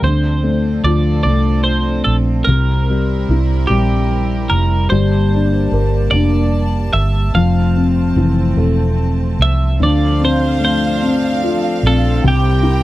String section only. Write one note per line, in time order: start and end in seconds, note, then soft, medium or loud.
0.02 2.46 F3 medium
0.02 4.88 C4 medium
0.02 2.46 D4 medium
0.02 2.45 A4 medium
2.49 4.90 G3 medium
2.49 4.90 E4 medium
2.49 4.90 A#4 medium
4.92 7.33 G3 medium
4.92 7.33 A#3 medium
4.92 7.33 D4 medium
4.92 9.76 A5 medium
7.34 9.78 A3 medium
7.34 9.77 C4 medium
9.78 12.21 F3 medium
9.78 12.83 C4 medium
9.78 12.21 D4 medium
9.78 12.22 A4 medium
12.23 12.83 G3 medium
12.23 12.83 E4 medium
12.23 12.83 A#4 medium